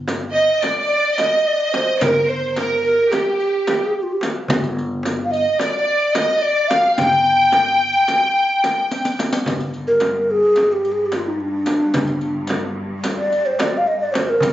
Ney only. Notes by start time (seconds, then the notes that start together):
0.34 D#5
0.62 D5
0.78 D5
1.18 D#5
1.47 D5
1.74 C5
2.04 A#4
2.29 C5
2.59 A#4
2.84 A#4
3.11 G4
3.85 G#4
3.95 G4
4.03 F4
4.13 G4
5.24 F5
5.31 D#5
5.59 D5
5.72 D5
6.14 D#5
6.41 D5
6.68 F5
6.96 G5
9.87 A#4
10.21 A#4
10.31 G#4
10.72 G4
10.92 G#4
11.06 G4
11.16 F4
11.28 D#4
11.41 D4
13.18 D5
13.46 C5
13.61 D5 D#5
13.77 F5
13.88 D#5
14.00 D5
14.12 C5
14.29 A#4